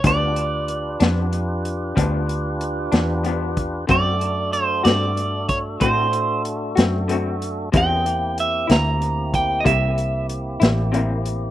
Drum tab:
HH |xxxxxxxxxxxx|xxxxxxxxxxxx|xxxxxxxxxxxx|
SD |---o-----o--|---o-----o--|---o-----o--|
BD |o-----o----o|o----oo-----|o----oo-----|